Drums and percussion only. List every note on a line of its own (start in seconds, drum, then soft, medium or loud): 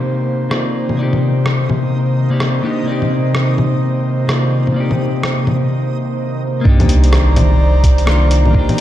0.51 cross-stick medium
0.89 low bongo soft
1.13 low bongo soft
1.46 cross-stick loud
1.70 low bongo medium
2.40 cross-stick medium
3.02 low bongo soft
3.35 cross-stick loud
3.58 low bongo medium
4.29 cross-stick loud
4.67 low bongo soft
4.91 low bongo soft
5.23 cross-stick loud
5.47 low bongo medium
6.65 kick loud
6.80 closed hi-hat soft
6.80 low bongo medium
6.89 closed hi-hat medium
7.04 closed hi-hat soft
7.13 cross-stick loud
7.36 closed hi-hat medium
7.36 low bongo medium
7.84 kick loud
7.84 closed hi-hat medium
7.98 closed hi-hat soft
8.07 cross-stick loud
8.31 closed hi-hat medium
8.45 low bongo soft
8.55 kick loud
8.69 closed hi-hat soft
8.69 low bongo medium